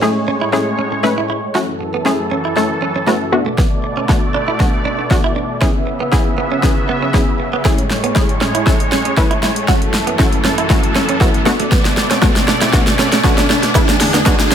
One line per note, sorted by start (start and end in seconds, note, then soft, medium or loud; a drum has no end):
0.00 1.53 A2 medium
0.00 1.53 G#3 medium
0.00 0.26 A3 medium
0.00 0.26 C#4 medium
0.00 0.27 E4 medium
0.00 0.27 G#4 medium
0.00 1.53 C#5 medium
0.00 muted clean electric guitar stroke soft
0.00 snare medium
0.00 riser medium
0.28 0.36 C#4 medium
0.41 0.49 E4 medium
0.53 0.77 A3 medium
0.53 0.77 C#4 medium
0.53 0.77 E4 medium
0.53 0.77 G#4 loud
0.53 muted clean electric guitar stroke soft
0.53 snare medium
0.79 0.87 C#4 medium
0.92 0.99 C#4 medium
1.03 1.28 A3 medium
1.03 1.28 C#4 medium
1.03 1.28 E4 medium
1.03 1.28 B4 loud
1.03 muted clean electric guitar stroke soft
1.03 snare medium
1.18 1.25 E4 medium
1.30 1.38 E4 medium
1.55 3.31 F#2 medium
1.55 3.31 E3 medium
1.55 1.79 A3 medium
1.55 1.79 C#4 medium
1.55 1.79 E4 medium
1.55 1.79 F#4 medium
1.55 1.63 F#4 medium
1.55 3.31 A4 medium
1.55 snare medium
1.81 muted clean electric guitar stroke soft
1.94 2.01 B3 medium
2.05 2.30 A3 medium
2.05 2.30 C#4 medium
2.05 2.30 E4 medium
2.05 2.30 G#4 loud
2.05 muted clean electric guitar stroke soft
2.05 snare medium
2.31 2.39 C#4 medium
2.45 2.52 E4 medium
2.56 2.81 A3 medium
2.56 2.81 C#4 medium
2.56 2.81 E4 medium
2.56 2.81 A4 medium
2.56 muted clean electric guitar stroke soft
2.56 snare medium
2.82 2.90 C#4 medium
2.96 3.03 C#4 medium
3.07 3.31 A3 medium
3.07 3.16 B3 medium
3.07 3.32 C#4 medium
3.07 3.32 E4 medium
3.07 3.31 F#4 medium
3.07 snare medium
3.32 5.60 B2 medium
3.32 3.94 A3 medium
3.32 5.60 A3 medium
3.32 3.94 B3 medium
3.32 3.94 D4 medium
3.32 3.94 F#4 loud
3.32 5.60 D5 medium
3.32 muted clean electric guitar stroke soft
3.46 3.53 A3 medium
3.58 3.66 B3 medium
3.58 kick loud
3.58 snare medium
3.84 muted clean electric guitar stroke soft
3.97 4.04 C#4 medium
4.09 4.33 A3 medium
4.09 4.33 B3 medium
4.09 4.33 D4 medium
4.09 4.33 F#4 medium
4.09 muted clean electric guitar stroke soft
4.09 kick loud
4.09 snare medium
4.34 4.42 D4 medium
4.48 4.55 E4 medium
4.60 4.84 A3 medium
4.60 4.84 B3 medium
4.60 4.84 D4 medium
4.60 4.84 F#4 loud
4.60 muted clean electric guitar stroke soft
4.60 kick loud
4.60 snare medium
4.85 4.93 D4 medium
4.99 5.06 D4 medium
5.11 5.35 A3 medium
5.11 5.35 B3 medium
5.11 5.35 D4 medium
5.11 5.35 F#4 loud
5.11 muted clean electric guitar stroke soft
5.11 kick loud
5.11 snare medium
5.24 5.31 E4 medium
5.36 5.44 D4 medium
5.61 7.63 C#3 medium
5.61 5.86 B3 medium
5.61 7.63 B3 medium
5.61 5.70 C#4 medium
5.61 5.86 C#4 medium
5.61 5.86 E4 medium
5.61 5.86 G#4 medium
5.61 7.63 E5 medium
5.61 kick loud
5.61 snare medium
5.87 muted clean electric guitar stroke soft
6.00 6.08 B3 medium
6.12 6.36 B3 medium
6.12 6.37 C#4 medium
6.12 6.37 E4 medium
6.12 6.37 G#4 medium
6.12 muted clean electric guitar stroke soft
6.12 kick loud
6.12 snare medium
6.38 6.46 B3 medium
6.52 6.59 C#4 medium
6.63 6.87 B3 medium
6.63 6.87 C#4 medium
6.63 6.87 E4 medium
6.63 6.88 G#4 medium
6.63 muted clean electric guitar stroke soft
6.63 kick loud
6.63 snare medium
6.89 6.97 B3 medium
7.02 7.10 C#4 medium
7.14 7.38 B3 medium
7.14 7.38 C#4 medium
7.14 7.22 C#4 medium
7.14 7.38 E4 medium
7.14 7.38 G#4 medium
7.14 kick loud
7.14 snare medium
7.40 muted clean electric guitar stroke soft
7.53 7.60 B3 medium
7.65 9.66 A2 medium
7.65 9.66 G#3 medium
7.65 7.89 A3 medium
7.65 7.73 A3 medium
7.65 7.89 C#4 medium
7.65 7.89 E4 medium
7.65 7.89 G#4 loud
7.65 9.66 C#5 medium
7.65 kick loud
7.65 snare medium
7.78 closed hi-hat medium
7.90 muted clean electric guitar stroke soft
7.90 snare medium
8.04 8.11 B3 medium
8.04 closed hi-hat medium
8.15 8.40 A3 medium
8.15 8.40 C#4 medium
8.15 8.40 E4 medium
8.15 8.40 G#4 medium
8.15 muted clean electric guitar stroke soft
8.15 kick loud
8.15 snare medium
8.29 closed hi-hat soft
8.41 8.49 C#4 medium
8.41 snare medium
8.55 8.62 E4 medium
8.55 closed hi-hat medium
8.66 8.91 A3 medium
8.66 8.91 C#4 medium
8.66 8.91 E4 medium
8.66 8.91 A4 medium
8.66 muted clean electric guitar stroke soft
8.66 kick loud
8.66 snare medium
8.80 closed hi-hat medium
8.92 9.00 C#4 medium
8.92 snare medium
9.05 9.13 C#4 medium
9.05 closed hi-hat medium
9.17 9.42 A3 medium
9.17 9.42 C#4 medium
9.17 9.42 E4 medium
9.17 9.42 B4 loud
9.17 muted clean electric guitar stroke soft
9.17 kick loud
9.17 snare medium
9.31 9.38 E4 medium
9.31 closed hi-hat soft
9.43 9.51 E4 medium
9.43 snare medium
9.56 closed hi-hat medium
9.68 11.45 F#2 medium
9.68 11.45 E3 medium
9.68 9.93 A3 medium
9.68 9.93 C#4 medium
9.68 9.93 E4 medium
9.68 9.76 F#4 medium
9.68 9.93 F#4 loud
9.68 11.45 A4 medium
9.68 kick loud
9.68 snare medium
9.82 closed hi-hat medium
9.94 muted clean electric guitar stroke soft
9.94 snare loud
10.07 10.14 B3 medium
10.07 closed hi-hat medium
10.19 10.43 A3 medium
10.19 10.43 C#4 medium
10.19 10.43 E4 medium
10.19 10.44 F#4 loud
10.19 muted clean electric guitar stroke soft
10.19 kick loud
10.19 snare loud
10.33 closed hi-hat soft
10.44 10.53 C#4 medium
10.44 snare medium
10.58 10.65 E4 medium
10.58 closed hi-hat medium
10.70 10.94 A3 medium
10.70 10.94 C#4 medium
10.70 10.94 E4 medium
10.70 10.94 F#4 medium
10.70 muted clean electric guitar stroke soft
10.70 kick loud
10.70 snare medium
10.83 closed hi-hat soft
10.95 11.04 C#4 medium
10.95 snare medium
11.09 11.16 C#4 medium
11.09 closed hi-hat medium
11.20 11.44 A3 medium
11.20 11.29 B3 medium
11.20 11.45 C#4 medium
11.20 11.45 E4 medium
11.20 11.45 F#4 medium
11.20 kick loud
11.20 snare medium
11.34 closed hi-hat soft
11.46 13.73 B2 medium
11.46 12.08 A3 loud
11.46 13.73 A3 medium
11.46 12.08 B3 medium
11.46 12.08 D4 medium
11.46 12.08 F#4 loud
11.46 13.73 D5 medium
11.46 muted clean electric guitar stroke soft
11.46 snare loud
11.60 11.67 A3 medium
11.60 closed hi-hat medium
11.72 11.80 B3 medium
11.72 kick loud
11.72 snare loud
11.85 snare loud
11.85 closed hi-hat medium
11.97 muted clean electric guitar stroke soft
11.97 snare loud
12.11 12.18 C#4 medium
12.11 snare loud
12.11 closed hi-hat medium
12.22 12.46 A3 medium
12.22 12.46 B3 medium
12.22 12.47 D4 medium
12.22 12.47 F#4 medium
12.22 muted clean electric guitar stroke soft
12.22 kick loud
12.22 snare loud
12.36 snare loud
12.36 closed hi-hat soft
12.48 12.56 D4 medium
12.48 snare loud
12.61 12.69 E4 medium
12.61 snare loud
12.61 closed hi-hat medium
12.73 12.98 A3 medium
12.73 12.98 B3 medium
12.73 12.98 D4 medium
12.73 12.98 F#4 loud
12.73 muted clean electric guitar stroke soft
12.73 kick loud
12.73 snare loud
12.87 snare loud
12.87 closed hi-hat medium
12.99 13.07 C#4 medium
12.99 snare loud
13.12 13.20 C#4 medium
13.12 snare loud
13.12 closed hi-hat medium
13.24 13.48 A3 loud
13.24 13.48 B3 medium
13.24 13.48 D4 medium
13.24 13.48 F#4 loud
13.24 muted clean electric guitar stroke soft
13.24 kick loud
13.24 snare loud
13.38 13.45 D4 medium
13.38 snare loud
13.38 closed hi-hat soft
13.50 13.58 D4 medium
13.50 snare loud
13.63 snare loud
13.63 closed hi-hat medium
13.75 14.55 E2 medium
13.75 14.55 D3 medium
13.75 13.99 G#3 medium
13.75 13.99 B3 medium
13.75 13.99 D4 medium
13.75 13.99 E4 loud
13.75 13.83 E4 medium
13.75 14.55 G#4 medium
13.75 kick loud
13.75 snare loud
13.75 shaker medium
13.89 snare loud
13.89 closed hi-hat medium
13.89 shaker medium
14.00 muted clean electric guitar stroke soft
14.00 snare loud
14.00 open hi-hat medium
14.00 shaker medium
14.14 14.21 B3 medium
14.14 snare loud
14.14 closed hi-hat medium
14.14 shaker medium
14.26 14.50 G#3 loud
14.26 14.50 B3 medium
14.26 14.50 D4 medium
14.26 14.50 F#4 loud
14.26 muted clean electric guitar stroke soft
14.26 kick loud
14.26 snare loud
14.26 shaker medium
14.39 snare loud
14.39 closed hi-hat soft
14.39 shaker soft
14.51 14.55 C#4 medium
14.51 snare loud
14.51 open hi-hat medium
14.51 shaker medium